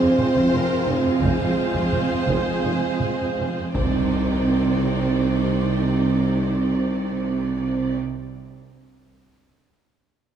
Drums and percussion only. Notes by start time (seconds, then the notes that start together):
0.18 taiko mid
0.35 taiko
1.21 taiko
1.38 taiko mid
1.74 taiko
1.92 taiko mid
2.27 taiko
3.00 taiko mid
3.74 taiko